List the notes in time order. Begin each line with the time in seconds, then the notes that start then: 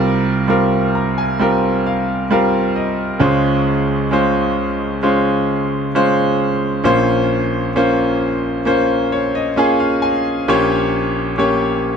Already playing: C2 C3 G3 C4 F4 A#4
0.48 G3 C4 F4 A#4
0.95 A#5
1.18 G#5
1.40 G3 C4 F4 A#4 G5
1.86 F5
2.31 G3 C4 F4 A#4 F5
2.76 D#5
3.19 C#2 C#3 G#3 C#4 F4 C5
4.11 G#3 C#4 F4 C5
5.03 G#3 C#4 F4 C5
5.95 G#3 C#4 F4 C5
6.84 A#1 A#2 A#3 C#4 F4 C5
7.76 A#3 C#4 F4 C5
8.65 A#3 C#4 F4 C5
9.12 C#5
9.35 D#5
9.56 A#3 C#4 F4 G#4 F5
9.80 F5
10.02 G#5
10.48 A#1 A#2 A#3 C#4 G4 C#5
11.38 A#3 C#4 G4 C#5